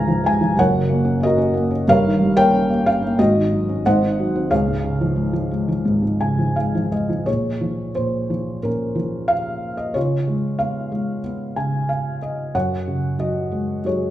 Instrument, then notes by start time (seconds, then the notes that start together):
felt piano
Already playing: C#2 G#2 C#3 F3 G#3 B4 F5 G#5 A#5
0.08 F3
0.24 G#3 G#5
0.41 F3
0.56 F#1 F#2 A#4 C#5 F#5
0.72 C#3
0.89 A#3
1.05 C#4
1.20 A#3 D#5
1.25 F#4 A#4
1.38 C#4
1.54 A#3
1.71 C#4
1.88 G1 G2 A#4 C#5 F5
2.04 D#3
2.20 G3
2.36 A#3 A#4 C#5 G5
2.54 C#4
2.70 A#3
2.86 C#4 F5
3.03 A#3
3.19 G#1 G#2 F#4 D#5
3.35 D#3
3.53 F#3
3.69 C#4
3.86 G#1 G#2 C5 D#5 F#5
4.02 D#3
4.19 F#3
4.36 C4
4.50 C#2 G#4 C#5 F5
4.68 G#2
4.84 C#3
5.01 F3
5.16 G#3
5.33 F3
5.51 G#3
5.69 F3
5.85 G#1 G#2
6.03 G#2
6.21 C#3 G#5
6.39 F3
6.56 G#3 F5
6.75 F3
6.92 G#3 D#5
7.09 F3
7.26 A#2 G#4 C#5
7.61 F3
7.95 A#2 C5
8.30 F3
8.63 A#2 C#4 A#4
8.95 F3
9.28 F5
9.77 D#5
9.94 C#3 F4 C#5
10.28 G#3
10.59 B3 F5
10.92 G#3
11.24 B3
11.56 C#3 G#5
11.89 F5
12.23 D#5
12.55 F#2 C#5 F#5
12.88 C#3
13.19 F#3 D#5
13.51 G#3
13.85 F#3 G#4 C#5